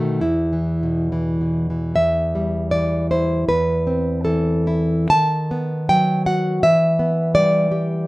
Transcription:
0.00 0.20 B2 medium
0.00 0.20 D#3 soft
0.00 0.20 A3 soft
0.00 0.19 F#4 medium
0.21 1.92 E2 medium
0.21 1.51 E4 medium
0.53 1.11 E3 soft
0.83 1.40 B2 soft
1.12 1.69 E3 soft
1.41 1.97 B2 soft
1.70 1.97 E3 soft
1.96 3.44 E2 medium
1.96 2.69 E5 medium
2.35 3.48 G3 soft
2.71 3.48 E3 soft
2.71 3.08 D5 medium
3.11 3.49 E4 soft
3.11 3.47 C5 medium
3.49 5.07 E2 medium
3.49 4.22 B4 medium
3.87 5.11 C4 soft
4.25 5.11 E3 medium
4.25 5.07 A4 medium
4.67 5.10 E4 medium
5.10 6.60 D#3 medium
5.10 5.87 A5 loud
5.51 6.64 B3 medium
5.89 6.64 F#3 medium
5.89 6.25 G5 loud
6.26 6.63 F#4 medium
6.26 6.62 F#5 loud
6.63 8.05 E3 medium
6.63 7.33 E5 loud
6.99 8.07 B3 medium
7.35 8.07 G3 medium
7.35 8.05 D5 loud
7.72 8.07 G4 medium

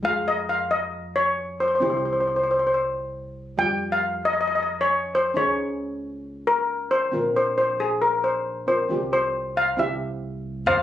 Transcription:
0.03 1.78 F2 medium
0.03 1.77 G#3 soft
0.03 1.78 F4 soft
0.03 1.78 G#4 medium
0.03 0.25 F5 medium
0.28 0.48 D#5 medium
0.49 0.59 F5 medium
0.71 1.16 D#5 medium
1.16 1.61 C#5 medium
1.60 1.67 C5 medium
1.68 1.74 C5 soft
1.75 1.81 C5 soft
1.80 3.55 C2 medium
1.80 3.54 C4 soft
1.80 3.55 E4 soft
1.80 3.56 G4 medium
1.80 1.89 C5 soft
1.90 1.96 C5 soft
1.97 2.04 C5 soft
2.05 2.11 C5 soft
2.13 2.19 C5 soft
2.20 2.26 C5 soft
2.27 2.35 C5 soft
2.36 2.42 C5 soft
2.44 2.50 C5 soft
2.51 2.58 C5 soft
2.59 2.65 C5 soft
2.67 2.73 C5 soft
2.74 2.81 C5 soft
3.58 5.32 F2 medium
3.58 5.32 G3 soft
3.58 5.33 F4 soft
3.58 5.33 G4 medium
3.58 3.90 G5 medium
3.92 4.26 F5 medium
4.25 4.32 D#5 medium
4.33 4.40 D#5 medium
4.41 4.46 D#5 medium
4.47 4.54 D#5 medium
4.55 4.61 D#5 medium
4.63 4.71 D#5 medium
4.81 5.15 C#5 medium
5.15 5.37 C5 medium
5.34 7.09 C#2 medium
5.34 7.09 C#4 medium
5.34 7.09 D#4 soft
5.34 7.10 G#4 medium
5.34 6.50 C#5 medium
6.47 6.93 A#4 medium
6.91 7.35 C5 medium
7.12 8.87 A#1 medium
7.12 8.64 C4 medium
7.12 8.65 F4 soft
7.12 8.66 A#4 medium
7.37 7.57 C5 medium
7.58 7.80 C5 medium
7.80 8.03 G#4 medium
8.02 8.24 A#4 medium
8.24 8.65 C5 medium
8.67 8.88 C4 soft
8.67 8.89 F4 soft
8.67 8.90 A#4 soft
8.67 9.12 C5 medium
8.89 9.77 C2 medium
8.89 9.76 C4 soft
8.89 9.77 F4 soft
8.89 9.77 G4 medium
9.13 9.58 C5 medium
9.57 9.77 F5 medium
9.77 10.65 C2 medium
9.77 10.64 C4 medium
9.77 10.64 E4 soft
9.77 10.65 G4 medium
9.77 10.20 E5 medium
10.66 10.83 F2 medium
10.66 10.83 C5 medium
10.66 10.83 F5 medium

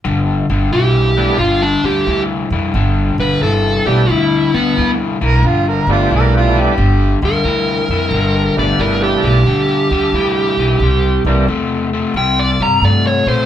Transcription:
0.05 0.41 G1 medium
0.05 0.45 G2 medium
0.05 0.45 D3 medium
0.49 0.68 G1 medium
0.49 0.70 G2 medium
0.49 0.70 D3 medium
0.72 1.27 B1 medium
0.72 1.13 G2 medium
0.72 1.13 E3 medium
0.72 1.38 G4 medium
1.17 1.38 G2 medium
1.17 1.38 E3 medium
1.17 1.37 G3 medium
1.17 1.38 A3 medium
1.17 1.38 B3 medium
1.17 1.38 D4 medium
1.38 1.75 G1 medium
1.38 1.80 G2 medium
1.38 1.80 D3 medium
1.38 1.61 F4 medium
1.62 1.84 D4 medium
1.83 2.02 D2 medium
1.83 2.05 G2 medium
1.83 2.05 D3 medium
1.83 2.21 G4 medium
2.07 2.43 D2 medium
2.07 2.47 G2 medium
2.07 2.48 E3 medium
2.50 2.69 F2 medium
2.50 2.73 G2 medium
2.50 2.73 E3 medium
2.74 3.10 G1 medium
2.74 3.15 G2 medium
2.74 3.15 D3 medium
3.18 3.37 G1 medium
3.18 3.40 G2 medium
3.18 3.40 D3 medium
3.18 3.42 B4 medium
3.41 3.78 G1 medium
3.41 3.83 G2 medium
3.41 3.83 E3 medium
3.41 3.86 A4 medium
3.86 4.04 B1 medium
3.86 4.08 G2 medium
3.86 4.08 E3 medium
3.86 4.06 G3 medium
3.86 4.07 A3 medium
3.86 4.07 B3 soft
3.86 4.07 D4 medium
3.86 4.10 G4 medium
4.09 4.45 D2 medium
4.09 4.50 G2 medium
4.09 4.50 D3 medium
4.09 4.53 E4 medium
4.54 4.72 D2 medium
4.54 4.75 G2 medium
4.54 4.75 D3 medium
4.54 4.90 B3 medium
4.77 5.13 D2 medium
4.77 5.17 G2 medium
4.77 5.17 E3 medium
5.21 5.40 B1 medium
5.21 5.42 G2 medium
5.21 5.42 E3 medium
5.21 5.48 A#4 medium
5.42 5.79 G1 medium
5.42 5.84 G2 medium
5.42 5.84 D3 medium
5.42 5.67 F4 medium
5.68 5.89 A#4 medium
5.87 6.06 G1 medium
5.87 6.09 G2 medium
5.87 6.10 D3 medium
5.87 6.74 G3 medium
5.87 6.74 A3 medium
5.87 6.74 B3 medium
5.87 6.75 D4 medium
5.91 6.12 F4 medium
6.11 6.65 B1 medium
6.11 6.51 G2 medium
6.11 6.51 E3 medium
6.15 6.35 A#4 medium
6.37 6.62 F4 medium
6.55 6.76 G2 medium
6.55 6.76 E3 medium
6.60 7.16 G4 medium
6.78 7.14 G1 medium
6.78 7.18 G2 medium
6.78 7.18 D3 medium
7.22 7.41 D2 medium
7.22 7.43 G2 medium
7.22 7.44 D3 medium
7.22 8.54 A#4 medium
7.44 7.81 D2 medium
7.44 7.86 G2 medium
7.44 7.86 E3 medium
7.88 8.07 F2 medium
7.88 8.11 G2 medium
7.88 8.11 E3 medium
8.11 8.48 G1 medium
8.11 8.53 G2 medium
8.11 8.54 D3 medium
8.56 8.75 G1 medium
8.56 8.78 G2 medium
8.56 8.78 D3 medium
8.56 9.42 G3 medium
8.56 9.42 A3 soft
8.56 9.43 B3 soft
8.56 9.43 D4 medium
8.56 8.80 D5 medium
8.79 9.15 G1 medium
8.79 9.20 G2 medium
8.79 9.21 E3 medium
8.79 9.02 A#4 medium
9.03 9.24 G4 medium
9.23 9.42 B1 medium
9.23 9.45 G2 medium
9.23 9.45 E3 medium
9.23 11.23 G4 medium
9.46 9.83 D2 medium
9.46 9.87 G2 medium
9.46 9.87 D3 medium
9.90 10.09 D2 medium
9.90 10.12 G2 medium
9.90 10.12 D3 medium
10.12 10.49 D2 medium
10.12 10.55 G2 medium
10.12 10.55 E3 medium
10.57 10.76 B1 medium
10.57 10.79 G2 medium
10.57 10.80 E3 medium
10.80 11.17 C2 medium
10.80 11.22 C3 medium
10.84 11.23 G3 medium
11.25 11.44 C2 medium
11.25 11.47 C3 medium
11.25 11.46 E3 medium
11.25 11.47 G3 medium
11.25 11.47 A#3 medium
11.25 11.47 D4 medium
11.48 12.03 E2 medium
11.48 11.89 C3 medium
11.48 11.89 A3 medium
11.93 12.14 C3 medium
11.93 12.14 A3 medium
12.14 12.51 C2 medium
12.14 12.56 C3 medium
12.14 12.56 G3 medium
12.14 12.38 G5 medium
12.39 12.61 D5 medium
12.60 12.78 G2 medium
12.60 12.81 C3 medium
12.60 12.81 G3 medium
12.60 12.83 A#5 medium
12.82 13.18 G2 medium
12.82 13.24 C3 medium
12.82 13.24 A3 medium
12.82 13.06 D5 medium
13.07 13.28 C#5 medium
13.26 13.45 A#2 medium
13.26 13.46 C3 medium
13.26 13.46 A3 medium
13.26 13.46 C5 medium

